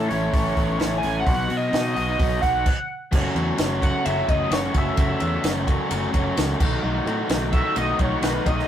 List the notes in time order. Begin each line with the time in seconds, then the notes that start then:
Already playing: A2 E3 C#4
0.08 A1 E3 A3 C#4 E4 A4 C#5, open hi-hat
0.31 A1 E3 A3 C#4 A4, kick, open hi-hat
0.55 A1 A3 B3 C#4 A4, kick, open hi-hat
0.79 A1 E3 A3 C#4 E4 A4, snare, open hi-hat
0.98 G#5
1.03 A1 A3 C#4 A4, open hi-hat
1.20 F#5
1.26 B1 B2 F#3 B3 D#4 F#4, kick, open hi-hat
1.49 B2 B3 D#4 F#4, open hi-hat
1.57 D#5
1.72 B2 F#3 B3 D#4 F#4, snare, open hi-hat
1.93 B1 D#4 F#4 D#5, open hi-hat
1.97 F#3 B3
2.17 B1 F#3 B3 D#4 F#4, kick, open hi-hat
2.41 B1 B3 D#4 F#4 F#5, kick, open hi-hat
2.66 kick, crash
3.12 F#1 F#2 C#3 F#3 A3 C#4 F#4, kick, crash
3.35 E2 F#2 C#3 F#3 A3 C#4 F#4, ride
3.57 F#1 F#2 C#3 F#3 A3 C#4 F#4, snare, ride
3.80 F#2 C#3 F#3 A3 C#4 F#4 F#5, kick, ride
4.05 F#1 F#2 C#3 F#3 A3 C#4 F#4 E5, ride
4.28 F#1 F#2 C#3 F#3 A3 C#4 F#4 D#5, kick, ride
4.51 F#1 F#2 C#3 F#3 A3 C#4 F#4 C#5, snare, ride
4.73 F#1 F#2 C#3 F#3 A3 C#4 F#4 E5, kick, ride
4.96 F#1 F#2 C#3 F#3 A3 C#4 F#4, kick, ride
5.19 E2 F#2 C#3 F#3 A3 C#4 F#4, ride
5.43 F#1 F#2 C#3 F#3 A3 C#4 F#4, snare, ride
5.66 F#2 C#3 F#3 A3 C#4 F#4, kick, ride
5.89 F#1 F#2 C#3 F#3 A3 C#4 F#4, ride
6.13 F#1 F#2 C#3 F#3 A3 C#4 F#4, kick, ride
6.36 C#2 F#2 C#3 F#3 A3 C#4 F#4, snare, ride
6.59 B1 B2 D#3 F#3 A3 D#4 F#4, kick, crash
6.83 B1 B2 D#3 F#3 A3 D#4 F#4
7.05 A2 B2 D#3 F#3 A3 D#4 F#4, ride
7.29 B1 B2 D#3 F#3 A3 D#4 F#4, snare, ride
7.52 B2 D#3 F#3 A3 D#4 F#4 E5, kick, ride
7.75 B1 B2 D#3 F#3 A3 D#4 F#4 D#5, ride
7.98 B1 B2 D#3 F#3 A3 D#4 F#4 C#5, kick, ride
8.22 B1 B2 D#3 F#3 A3 D#4 F#4 B4, snare, ride
8.45 B1 B2 D#3 F#3 A3 D#4 F#4 D#5, kick, ride
8.59 snare